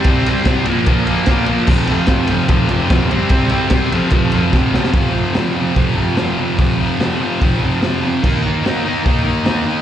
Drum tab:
CC |----------------|x---------------|----------------|----------------|
RD |x-x-x-x-x-x-x-x-|--x-x-x-x-x-x-x-|x-x-x-x-x-x-----|----------------|
HH |----------------|----------------|----------------|o---o---o---o---|
SD |----o-------o---|----o-------o---|----o-------o-oo|----o-------o---|
BD |o---o---o---o---|o---o---o---o---|o---o---o---o---|o-------o-------|

CC |----------------|x---------------|
RD |----------------|----------------|
HH |o---o---o---o---|----o---o---o---|
SD |----o-------o---|----o-------o---|
BD |o-------o-------|o-------o-------|